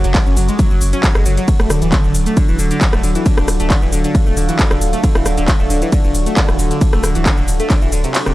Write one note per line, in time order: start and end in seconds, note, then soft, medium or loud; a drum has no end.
0.00 0.14 F#1 medium
0.00 8.34 F#3 medium
0.00 1.48 C#4 medium
0.00 8.34 F#4 medium
0.00 8.34 A4 medium
0.00 1.48 F#5 medium
0.04 0.09 F#3 loud
0.04 closed hi-hat medium
0.04 shaker soft
0.15 kick loud
0.15 clap loud
0.15 closed hi-hat medium
0.15 ride medium
0.15 shaker soft
0.26 0.36 F#1 medium
0.26 0.31 C#4 medium
0.26 shaker soft
0.37 0.48 F#1 loud
0.37 0.42 F#3 medium
0.37 open hi-hat loud
0.37 shaker medium
0.49 0.53 G#3 medium
0.49 closed hi-hat medium
0.49 shaker soft
0.59 0.64 F#3 medium
0.59 kick loud
0.59 closed hi-hat medium
0.59 ride medium
0.59 shaker soft
0.71 0.81 F#1 medium
0.71 0.75 F#3 loud
0.71 shaker soft
0.81 0.93 F#1 loud
0.81 open hi-hat loud
0.81 shaker medium
0.93 0.98 C#4 medium
0.93 closed hi-hat medium
0.93 shaker soft
1.03 1.09 F#3 medium
1.03 kick loud
1.03 clap loud
1.03 closed hi-hat medium
1.03 ride medium
1.03 shaker soft
1.15 1.25 F#1 medium
1.15 1.20 G#3 medium
1.15 cross-stick loud
1.15 shaker soft
1.26 1.37 F#1 loud
1.26 1.31 F#3 medium
1.26 open hi-hat loud
1.26 shaker medium
1.37 1.42 F#3 loud
1.37 closed hi-hat medium
1.37 shaker soft
1.48 8.34 D4 medium
1.48 kick loud
1.48 closed hi-hat medium
1.48 ride medium
1.48 shaker soft
1.60 1.69 D1 medium
1.60 1.64 A3 medium
1.60 cross-stick loud
1.60 shaker soft
1.70 1.81 D1 loud
1.70 1.75 D3 medium
1.70 cross-stick loud
1.70 open hi-hat loud
1.70 shaker medium
1.82 1.92 D1 medium
1.82 1.86 E3 medium
1.82 closed hi-hat medium
1.82 shaker soft
1.92 1.98 D3 medium
1.92 kick loud
1.92 clap loud
1.92 closed hi-hat medium
1.92 ride medium
1.92 shaker soft
1.98 8.34 F5 medium
2.04 2.14 D1 medium
2.04 2.09 D3 loud
2.04 shaker soft
2.15 2.26 D1 loud
2.15 open hi-hat loud
2.15 shaker medium
2.26 2.31 A3 medium
2.26 closed hi-hat medium
2.26 shaker soft
2.37 2.42 D3 medium
2.37 kick loud
2.37 closed hi-hat medium
2.37 ride medium
2.37 shaker soft
2.48 2.59 D1 medium
2.48 2.53 E3 medium
2.48 shaker soft
2.59 2.71 D1 loud
2.59 2.64 D3 medium
2.59 open hi-hat loud
2.59 shaker medium
2.71 2.75 D3 loud
2.71 closed hi-hat medium
2.71 shaker soft
2.81 kick loud
2.81 clap loud
2.81 closed hi-hat medium
2.81 ride medium
2.81 shaker soft
2.93 3.03 D1 medium
2.93 2.98 A3 medium
2.93 cross-stick loud
2.93 shaker soft
3.03 3.15 D1 loud
3.03 3.09 D3 medium
3.03 open hi-hat loud
3.03 shaker medium
3.15 3.20 E3 medium
3.15 closed hi-hat medium
3.15 shaker soft
3.26 3.31 D3 medium
3.26 kick loud
3.26 closed hi-hat medium
3.26 ride medium
3.26 shaker soft
3.37 3.47 D1 medium
3.37 3.42 D3 loud
3.37 cross-stick loud
3.37 shaker soft
3.48 3.59 D1 loud
3.48 cross-stick loud
3.48 open hi-hat loud
3.48 shaker medium
3.60 3.70 D1 medium
3.60 3.64 A3 medium
3.60 closed hi-hat medium
3.60 shaker soft
3.70 3.75 D3 medium
3.70 kick loud
3.70 clap loud
3.70 closed hi-hat medium
3.70 ride medium
3.70 shaker soft
3.82 3.92 D1 medium
3.82 3.86 E3 medium
3.82 shaker soft
3.92 4.04 D1 loud
3.92 3.97 D3 medium
3.92 open hi-hat loud
3.92 shaker medium
4.04 4.09 D3 loud
4.04 closed hi-hat medium
4.04 shaker soft
4.15 kick loud
4.15 closed hi-hat medium
4.15 ride medium
4.15 shaker soft
4.26 4.36 D1 medium
4.26 4.31 A3 medium
4.26 shaker soft
4.37 4.48 D1 loud
4.37 4.42 D3 medium
4.37 open hi-hat loud
4.37 shaker medium
4.49 4.53 E3 medium
4.49 closed hi-hat medium
4.49 shaker soft
4.59 4.64 D3 medium
4.59 kick loud
4.59 clap loud
4.59 closed hi-hat medium
4.59 ride medium
4.59 shaker soft
4.71 4.81 D1 medium
4.71 4.75 D3 loud
4.71 cross-stick loud
4.71 shaker soft
4.81 4.93 D1 loud
4.81 open hi-hat loud
4.81 shaker medium
4.93 4.98 A3 medium
4.93 closed hi-hat medium
4.93 shaker soft
5.04 5.09 D3 medium
5.04 kick loud
5.04 closed hi-hat medium
5.04 ride medium
5.04 shaker soft
5.15 5.25 D1 medium
5.15 5.20 E3 medium
5.15 cross-stick loud
5.15 shaker soft
5.26 5.37 D1 loud
5.26 5.31 D3 medium
5.26 cross-stick medium
5.26 open hi-hat loud
5.26 shaker medium
5.37 5.48 D1 medium
5.37 5.42 D3 loud
5.37 closed hi-hat medium
5.37 shaker soft
5.48 kick loud
5.48 clap loud
5.48 closed hi-hat medium
5.48 ride medium
5.48 shaker soft
5.60 5.70 D1 medium
5.60 5.64 A3 medium
5.60 shaker soft
5.70 5.82 D1 loud
5.70 5.75 D3 medium
5.70 open hi-hat loud
5.70 shaker medium
5.82 5.86 E3 medium
5.82 closed hi-hat medium
5.82 shaker soft
5.92 5.97 D3 medium
5.92 kick loud
5.92 closed hi-hat medium
5.92 ride medium
5.92 shaker soft
6.04 6.14 D1 medium
6.04 6.09 D3 loud
6.04 shaker soft
6.15 6.26 D1 loud
6.15 open hi-hat loud
6.15 shaker medium
6.26 6.31 A3 medium
6.26 closed hi-hat medium
6.26 shaker soft
6.37 6.42 D3 medium
6.37 kick loud
6.37 clap loud
6.37 closed hi-hat medium
6.37 ride medium
6.37 shaker soft
6.49 6.58 D1 medium
6.49 6.53 E3 medium
6.49 cross-stick medium
6.49 shaker soft
6.59 6.71 D1 loud
6.59 6.64 D3 medium
6.59 open hi-hat loud
6.59 shaker medium
6.71 6.75 D3 loud
6.71 closed hi-hat medium
6.71 shaker soft
6.81 kick loud
6.81 closed hi-hat medium
6.81 ride medium
6.81 shaker soft
6.93 7.03 D1 medium
6.93 6.98 A3 medium
6.93 cross-stick medium
6.93 shaker soft
7.03 7.15 D1 loud
7.03 7.09 D3 medium
7.03 cross-stick loud
7.03 open hi-hat loud
7.03 shaker medium
7.15 7.26 D1 medium
7.15 7.20 E3 medium
7.15 closed hi-hat medium
7.15 shaker soft
7.26 7.31 D3 medium
7.26 kick loud
7.26 clap loud
7.26 closed hi-hat medium
7.26 ride medium
7.26 shaker soft
7.37 7.47 D1 medium
7.37 7.42 D3 loud
7.37 shaker soft
7.48 7.59 D1 loud
7.48 open hi-hat loud
7.48 shaker medium
7.60 7.64 A3 medium
7.60 closed hi-hat medium
7.60 shaker soft
7.70 7.75 D3 medium
7.70 kick loud
7.70 clap medium
7.70 closed hi-hat medium
7.70 ride medium
7.70 shaker soft
7.82 7.92 D1 medium
7.82 7.86 E3 medium
7.82 shaker soft
7.92 8.04 D1 loud
7.92 8.00 D3 medium
7.92 open hi-hat loud
7.92 shaker medium
8.04 8.09 C3 medium
8.04 closed hi-hat medium
8.04 shaker soft
8.15 clap loud
8.15 closed hi-hat medium
8.15 ride medium
8.15 shaker soft
8.26 8.34 D1 medium
8.26 8.31 C3 medium
8.26 cross-stick medium
8.26 shaker soft